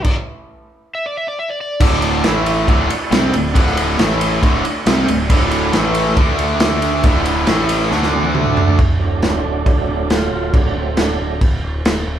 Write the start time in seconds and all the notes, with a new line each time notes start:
0.04 kick, crash
0.95 E5
1.06 D5
1.17 E5
1.28 D5
1.39 E5
1.50 D5
1.61 D5
1.80 D1 D2 A2 D3 D4 F#4 A4 D5, kick, crash
1.92 snare
2.02 ride
2.23 A1 A2 E3 A3 E4 A4 E5, snare, ride
2.46 ride
2.68 D1 D2 A2 D3 D4 F#4 A4 D5, kick, ride
2.89 muted overdriven electric guitar stroke, muted picked electric bass stroke, ride
3.11 C2 C3 G3 C4, snare, ride
3.33 D1 D2 A2, ride
3.54 D1 D2 A2 D3, kick, ride
3.67 snare
3.77 ride
3.98 A1 A2 E3 A3 E4 A4 E5, snare, ride
4.11 snare
4.21 ride
4.42 D1 D2 A2 D3 D4 F#4 A4 D5, kick, ride
4.64 muted picked electric bass stroke, muted overdriven electric guitar stroke, ride
4.86 C2 C3 G3 C4, snare, ride
5.08 D1 D2 A2, ride
5.30 D1 D2 A2 D3, kick, ride
5.51 ride
5.73 A1 A2 E3 A3 E4 A4 E5, snare, ride
5.95 ride
6.16 D2 D3 A3 D4 F#4 A4 D5, kick, ride
6.39 ride
6.60 snare, ride
6.82 ride
7.03 D1 D2 A2 D3, kick, ride
7.25 ride
7.47 A1 A2 E3 A3 E4 A4 E5, snare, ride
7.58 snare
7.69 ride
7.91 D2 D3 A3 D4 F#4 A4 D5, snare
8.03 snare
8.13 high tom
8.24 high tom
8.35 mid tom
8.46 mid tom
8.57 floor tom
8.68 floor tom
8.79 D1, kick, crash
8.99 D1 F#3 A3 D4
9.22 D1 C4, snare, crash
9.43 D1 C#4
9.48 D4
9.66 D1, kick, crash
9.87 D1
10.09 D1, snare, crash
10.13 F4
10.31 D1 F4
10.53 D1 F#3 A3 D4, kick, crash
10.76 D1 C4
10.97 D1 F#3, snare, crash
11.01 D4
11.20 D1 F#3 A3 D4
11.41 D1, kick, crash
11.63 D1
11.84 D1, snare, crash
12.06 D1